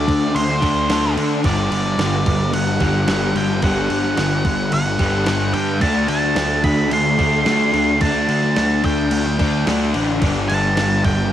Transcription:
Already playing: D3 A3 C4 D4 G4 D5
0.08 D2, kick, crash
0.35 D2 C5, crash
0.50 snare
0.62 D2 D3 A3 D4, kick, crash
0.89 D2 D3 A3 D4, snare, crash
1.16 D3 A3 D4, crash
1.44 G1 G2 D3 G3 F#4 D5, kick, crash
1.71 G1, crash
1.86 snare
1.98 G1 G2 D3 G3, snare, crash
2.26 G1, kick, crash
2.53 G1 F#5, crash
2.67 snare
2.80 G1 G2 D3 G3, kick, crash
3.08 G1 G2 D3 G3, snare, crash
3.35 G1 D3 G3 G5, crash
3.62 G1 G2 D3 G3 F#5, kick, crash
3.90 G1, crash
4.04 snare
4.17 G1 G2 D3 G3, snare, crash
4.45 G1, kick, crash
4.72 G1 F#5, crash
4.86 snare
4.99 G1 G2 D3 G3, kick, crash
5.26 G1 G2 D3 G3, snare, crash
5.54 G2 D3 G3 G5, crash
5.81 D2 D3 A3 C4 D4 G4 A5, kick, crash
6.08 D2 A5, crash
6.23 snare
6.36 D2 D3 A3 D4, snare, crash
6.64 D2 B5, kick, crash
6.91 D2 C6, crash
7.18 D2 D3 A3 D4, kick, crash
7.45 D2 D3 A3 D4, snare, crash
7.73 D2 A3 D4, crash
8.00 D2 D3 A3 D4 A5, kick, crash
8.28 D2, crash
8.43 snare
8.56 D2 D3 A3 D4, snare, crash
8.84 D2 G5, kick, crash
9.11 D2, crash
9.26 snare
9.39 D2 A3 D4, kick, crash
9.43 D3
9.66 D2 D3 A3 D4, snare, crash
9.94 A1 A3 D4, crash
10.21 G1 G2 D3 G3 B3 D4 F#4, kick, crash
10.48 G1 A5, crash
10.77 G1 G2 D3 G3, snare, crash
11.04 G1 G5, kick, crash

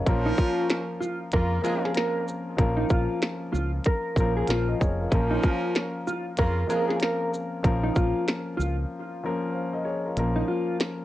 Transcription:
0.06 A#1 F3 A#3 C#4 F4 A#4, kick, closed hi-hat
0.25 D#4
0.38 F4, kick, shaker
0.70 snare, closed hi-hat
1.01 F4, shaker
1.32 F2 C#3 A#3 F4 A#4, kick, closed hi-hat
1.62 F3 G#3 A#3 C4 F4 G#4 A#4, closed hi-hat, shaker
1.70 C#4
1.85 G#4, snare
1.95 A#4, snare, closed hi-hat
2.28 shaker
2.57 A#1 F3 A#3 C#4 F4 A#4, kick, closed hi-hat
2.77 D#4
2.90 A#1 F4, kick, shaker
3.22 snare, closed hi-hat
3.53 C#2 F4, shaker
3.84 A#4, kick, closed hi-hat
4.16 A#1 F3 A#3 C#4 F4, kick, closed hi-hat, shaker
4.20 A#4
4.37 G#4
4.47 A#1 F4 C5 F5, snare, closed hi-hat
4.68 A#4 D#5
4.80 F1 G#4 C#5, kick, shaker
5.00 F4 A#4
5.09 A#1 F3 A#3 C#4 A#4, kick, closed hi-hat
5.13 F4 A#4
5.30 D#4
5.43 F4, kick, shaker
5.75 snare, closed hi-hat
6.07 F4, shaker
6.37 F2 C#3 A#3 F4 A#4, kick, closed hi-hat
6.67 F3 G#3 A#3 C4 F4 G#4 A#4, closed hi-hat, shaker
6.75 C#4
6.89 G#4, snare
7.00 A#4, snare, closed hi-hat
7.34 shaker
7.63 A#1 F3 A#3 C#4 F4 A#4, kick, closed hi-hat
7.83 D#4
7.95 A#1 F4, kick, shaker
8.28 snare, closed hi-hat
8.57 C#2 F4, shaker
9.23 F3 A#3 C#4 F4 A#4
9.52 C5 F5
9.73 A#4 D#5
9.85 G#4 C#5
10.06 F4 A#4
10.17 A#1 F3 A#3 C#4 F4 A#4, closed hi-hat
10.36 D#4
10.48 F4
10.80 snare, closed hi-hat

